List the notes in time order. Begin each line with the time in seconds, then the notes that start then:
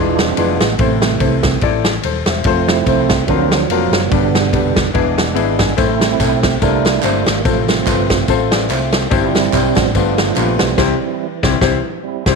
Already playing: E1 E3 G#3 D4 E4 F4 G#4 B4
0.19 C4, snare, ride
0.37 F1 B3 D4 E4 F4 G#4 B4, ride
0.60 A1 B3, snare, ride
0.79 A1 A2 C3 E3 A3 C4 E4 A4 C5, kick, ride
1.02 snare, ride
1.20 C2 A3 C4 E4 A4 C5, kick, ride
1.43 E3 A3 C4, kick, snare, ride
1.61 A1 A3 C4 E4 A4 D5, kick, ride
1.84 snare, ride
2.03 D#1 A4 C5, ride
2.26 E1 C5 E5, snare, ride
2.44 F1 F3 A3 C4 F4 A4 C5, kick, ride
2.68 A3 C4 E4, snare, ride
2.87 C2 A3 C4 F4 A4 C5, kick, ride
3.09 kick, snare, ride
3.27 D2 D3 F3 F#3 A#3 C4 D4 F4 F#4 A#4, kick, ride
3.51 snare, ride
3.69 F1 A#3 C4 D4 F4 F#4 A#4, ride
3.91 F#1 A#3, snare, ride
4.10 G1 G2 B2 D3 G3 B3 D4 G4 B4, kick, ride
4.35 snare, ride
4.53 F1 G3 B3 D4 G4 B4, kick, ride
4.76 kick, snare, ride
4.94 E1 E3 G#3 B3 D4 E4 G#4 B4, kick, ride
5.18 snare, ride
5.35 G#1 B3 D4 E4 G#4 B4 E5, ride
5.59 G#5, kick, snare, ride
5.77 A1 A2 A3 C4 E4 A4 C5, kick, ride, tambourine
6.01 A3 C4 E4, snare, ride, tambourine
6.20 B1 A3 C4 E4 A4 C5, kick, clap, ride, tambourine
6.43 kick, snare, ride, tambourine
6.62 C2 C3 G3 A3 A#3 C4 D4 E4 A4 A#4, kick, ride, tambourine
6.85 snare, ride, tambourine
7.03 G1 A#3 C4 D4 E4 A4 C5, clap, ride, tambourine
7.26 G#1 A#3, snare, ride, tambourine
7.45 A1 A2 C3 F3 A3 C4 F4 A4 C5, kick, ride, tambourine
7.49 A3
7.68 A3 C4 F4, snare, ride, tambourine
7.86 G1 A3 C4 F4 A4 B4, kick, clap, ride, tambourine
8.10 kick, snare, ride, tambourine
8.28 A1 A3 C4 F4 A4 C5, kick, ride, tambourine
8.52 B4 D5, snare, ride, tambourine
8.70 C2 C5 E5, clap, ride, tambourine
8.92 A4 C5, snare, ride, tambourine
9.10 G1 G2 G3 C4 E4 G4 C5, kick, ride, tambourine
9.28 F4
9.35 G3 C4 E4, snare, ride, tambourine
9.53 B1 G3 C4 E4 G4 C5, kick, clap, ride, tambourine
9.75 A1 F3 B3 D4, kick, snare, ride, tambourine
9.94 G1 G2 A3 B3 D4 F4 G4 B4, kick, ride, tambourine
10.18 snare, ride, tambourine
10.35 A#1 B3 D4 F4 G4 B4, clap, ride, tambourine
10.57 B1 E3 G3 C4, snare, ride, tambourine
10.78 C2 C3 G3 C4 E4 G4 C5, kick, snare, crash
11.01 G3 C4 E4
11.43 C2 G3 C4 E4 G4, kick, snare
11.61 C2 G3 C4 E4 G4 C5, kick, snare
12.04 G3 C4 E4
12.26 C2 G3 C4 E4 G4 C5, kick, snare, crash